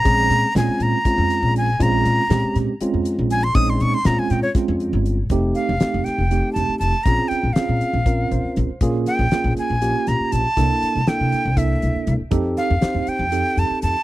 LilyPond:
<<
  \new Staff \with { instrumentName = "Flute" } { \time 7/8 \key bes \dorian \tempo 4 = 120 bes''4 aes''8 bes''4. aes''8 | bes''4. r4. aes''16 c'''16 | ees'''16 c'''16 des'''16 c'''16 bes''16 aes''16 g''16 des''16 r4. | r8 f''4 g''4 a''8 a''8 |
bes''8 g''8 f''2 r8 | r8 g''4 aes''4 bes''8 a''8~ | a''4 g''4 e''4 r8 | r8 f''4 g''4 a''8 a''8 | }
  \new Staff \with { instrumentName = "Tine electric piano" } { \time 7/8 \key bes \dorian << { r2. r8 | r2. r8 | r2. r8 | r2. r8 |
r2 r8 c''4 | r2. r8 | r2. r8 | r2. r8 | } \\ { <aes c' des' aes'>4 <aes c' des' f'>4 <aes c' des' f'>4~ <aes c' des' f'>16 r16 | <aes c' des' f'>4 <aes c' des' g'>4 <aes c' des' f'>4~ <aes c' des' f'>16 r16 | <aes c' des' ees'>4 <aes c' des' f'>4 <aes c' des' f'>4~ <aes c' des' f'>16 r16 | <a c' ees' g'>4 <a c' ees' g'>4 <a c' ees' g'>4~ <a c' ees' g'>16 r16 |
<c' des' f' aes'>4 <c' des' f' aes'>4 <c' des' f' bes'>4~ <c' des' f' bes'>16 r16 | <bes des' f' aes'>4 <bes des' f' aes'>4 <bes des' f' g'>4~ <bes des' f' g'>16 r16 | <bes d' e' a'>4 <bes d' e' a'>4 <bes d' e' a'>4~ <bes d' e' a'>16 r16 | <c' ees' g' a'>4 <c' ees' g' c''>4 <c' ees' g' a'>4~ <c' ees' g' a'>16 r16 | } >> }
  \new Staff \with { instrumentName = "Upright bass" } { \clef bass \time 7/8 \key bes \dorian bes,,8 bes,16 r16 bes,16 r16 bes,16 r8 f,8 bes,,8. | bes,,8 bes,16 r16 bes,16 r16 bes,16 r8 f,8 bes,,8. | bes,,8 bes,16 r16 bes,16 r16 bes,16 r8 f,8 g,,8. | f,,8 r16 f,,16 r16 f,,16 r16 f,,8 r16 f,,16 r16 f,,16 r16 |
bes,,16 r8 bes,,16 r16 bes,16 r16 bes,,8. bes,,16 r16 bes,,16 r16 | bes,,8 r16 bes,,16 r16 bes,,16 r16 bes,,8 r16 bes,,16 r16 bes,,16 r16 | c,16 r8 c,16 r16 c16 r16 c,8. c,16 r16 c,16 r16 | f,8 r16 f,16 r16 f,16 r16 f,8 r16 f,16 r16 f,16 r16 | }
  \new DrumStaff \with { instrumentName = "Drums" } \drummode { \time 7/8 <hh bd>8 <hh sn>8 <hh sn>8 hh8 <hh bd>8 hh8 hh8 | <hh bd>8 hh8 <hh sn>8 <hh sn>8 hh8 hh8 hh8 | <hh bd>8 hh8 <hh sn>8 <hh sn>8 <hh bd sn>8 hh8 hh8 | <hh bd>8 hh8 <hh sn>8 <hh sn>8 hh8 hh8 hh8 |
<hh bd>8 hh8 <hh sn>8 hh8 <hh bd>8 hh8 hh8 | <hh bd>8 <hh sn>8 <hh sn>8 hh8 hh8 <hh sn>8 hh8 | <hh bd>8 hh8 <hh sn>8 hh8 <hh bd>8 hh8 hh8 | <hh bd>8 <hh sn>8 <hh sn>8 hh8 hh8 hh8 hh8 | }
>>